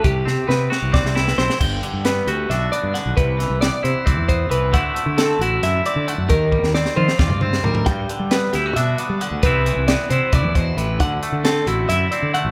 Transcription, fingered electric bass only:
\new Staff \with { instrumentName = "Fingered electric bass" } { \clef bass \time 7/8 \key g \major \tempo 4 = 134 c,8 c16 r16 c8 r16 c,8 c,8. b,,16 r16 | g,,8 r16 g,8. d,8 b,,8 r16 g,16 r16 b,,16 | c,8. c,8 r16 c16 r16 c,16 e,8. c,8 | d,8 r16 d8. a,,8 fis,8 r16 d16 r16 fis,16 |
ees,8. ees,8 r16 ees16 r16 ees,16 g,8. d,8 | g,8 r16 g8. d,8 b,8 r16 g16 r16 d,16 | c,8. c,8 r16 c16 r16 c,16 e,8. a,,8 | d,8 r16 d8. a,,8 fis,8 r16 d16 r16 a,,16 | }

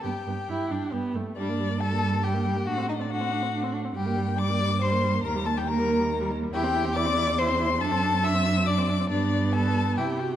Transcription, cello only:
\new Staff \with { instrumentName = "Cello" } { \clef bass \time 3/4 \key g \major \tempo 4 = 139 g,8 g,8 g,8 g,8 g,8 g,8 | \key g \minor g,2. | a,2. | g,2. |
ees,2. | \key g \major e,2. | fis,2. | g,2 c4 | }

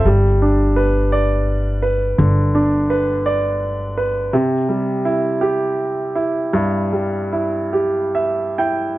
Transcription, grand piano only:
\new Staff \with { instrumentName = "Grand piano" } { \time 6/8 \key g \mixolydian \tempo 4. = 56 << { r2. | r2. | r2. | r2 e''8 g''8 | } \\ { g8 d'8 b'8 d''4 b'8 | d8 d'8 b'8 d''4 b'8 | c8 g8 e'8 g'4 e'8 | g,8 g8 e'8 g'4 e'8 | } >> }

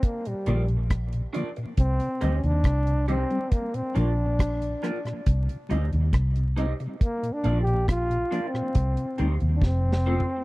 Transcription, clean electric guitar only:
\new Staff \with { instrumentName = "Clean electric guitar" } { \time 4/4 \key bes \major \tempo 4 = 69 r8 <d' f' bes' d''>8 r8 <d' f' bes' d''>8 r8 <ees' g' c'' ees''>8 r8 <ees' g' c'' ees''>8 | r8 <d' f' bes' d''>8 r8 <d' f' bes' d''>8 r8 <ees' g' c'' ees''>8 r8 <ees' g' c'' ees''>8 | r8 <d' f' bes' d''>8 r8 <d' f' bes' d''>8 r8 <c' ees' g' c''>8 r8 <c' f' a' c''>8 | }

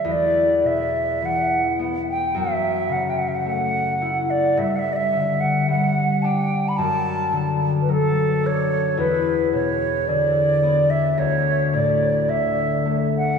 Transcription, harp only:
\new Staff \with { instrumentName = "Harp" } { \clef bass \time 4/4 \key e \dorian \tempo 4 = 54 e,8 b,8 e8 b8 fis,8 cis8 a8 e'8 | g,8 d8 g8 d'8 fis,8 d8 fis8 d'8 | e,8 b,8 d8 b8 d,8 a,8 d8 a8 | }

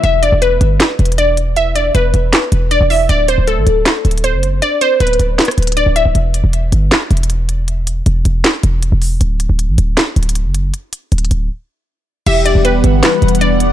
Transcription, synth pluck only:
\new Staff \with { instrumentName = "Synth pluck" } { \time 4/4 \key e \minor \tempo 4 = 157 e''8 d''8 b'2 d''8 r8 | e''8 d''8 b'2 d''8 e''8 | d''8 c''8 a'2 c''8 r8 | d''8 c''8 b'2 d''8 e''8 |
r1 | r1 | r1 | r1 |
e''8 d''8 b'2 d''8 r8 | }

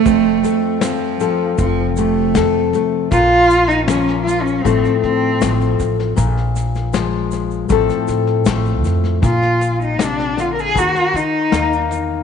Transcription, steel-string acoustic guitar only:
\new Staff \with { instrumentName = "Steel-string acoustic guitar" } { \time 4/4 \key f \phrygian \tempo 4 = 78 << { c'8 a8 c'8 a'8 c'8 a8 a'8 a8 | r4 bes4 <f a c' a'>4 a4 | r4 aes4 <f a c' a'>4 a4 | r2. ees'4 | } \\ { f,4. f4 c4. | bes,4 f4 a,4 f4 | bes,4 f4 a,4 f4 | bes,4 c8 d8 ees4 bes4 | } >> }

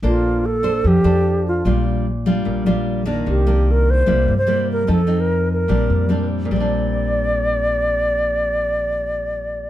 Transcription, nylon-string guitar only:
\new Staff \with { instrumentName = "Nylon-string guitar" } { \time 4/4 \key bes \major \tempo 4 = 148 << { <d' a' c''>4 r8 <d' a' c''>4 <d' a' c''>4. | <g d' f'>4 r8 <g d' f'>4 <g d' f'>4 <ees bes d'>8~ | <ees bes d'>8 <ees bes d'>4. <g bes e'>8 r8 <g bes e'>4 | <c' ees' a'>8 <c' ees'>4. <g c' d'>4 <g c' d'>4 |
<bes, g c' d'>1~ | <bes, g c' d'>1 | } \\ { bes2 f2 | bes,2 bes,2 | c2 c2 | f2 bes,2 |
r1 | r1 | } >> }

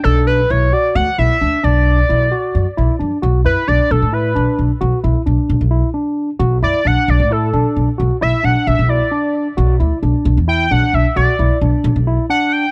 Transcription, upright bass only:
\new Staff \with { instrumentName = "Upright bass" } { \clef bass \time 7/8 \key b \minor \tempo 4 = 132 b,,4 b,,8 r8 d,16 r16 b,,16 r16 d,16 r16 | b,,4 b,,8 r8 fis,16 r16 b,,16 r16 fis,16 r16 | b,,8 fis,16 r16 b,,16 r16 b,,16 a,8. b,,16 r16 b,,16 r16 | b,,16 r16 b,,16 r16 b,,16 r16 b,,16 b,,8 r4 r16 |
b,,8 fis,16 r16 b,,16 r16 b,,16 a,8. b,,16 r16 b,,16 r16 | b,,16 r16 b,,16 r16 b,,16 r16 b,,16 b,,8 r4 r16 | b,,8 d,16 r16 b,,16 r16 b,,16 e,8. b,,16 r16 b,,16 r16 | b,,16 r16 b,,16 r16 b,,16 r16 b,,16 b,,8 r4 r16 | }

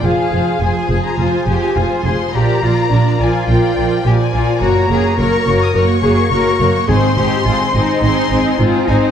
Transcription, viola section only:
\new Staff \with { instrumentName = "Viola section" } { \time 4/4 \key f \dorian \tempo 4 = 105 <f f'>8 <f f'>8 <f f'>8 <f f'>8 <f f'>8 <f f'>8 <f f'>8 <f f'>8 | <f f'>8 <f f'>8 <f f'>8 <f f'>8 <f f'>8 <f f'>8 <f f'>8 <f f'>8 | <bes ges'>8 <bes ges'>8 <bes ges'>8 <bes ges'>8 <bes ges'>8 <bes ges'>8 <bes ges'>8 <bes ges'>8 | <c' ees'>8 <c' ees'>8 <c' ees'>8 <c' ees'>8 <c' ees'>8 <c' ees'>8 <c' ees'>8 <c' ees'>8 | }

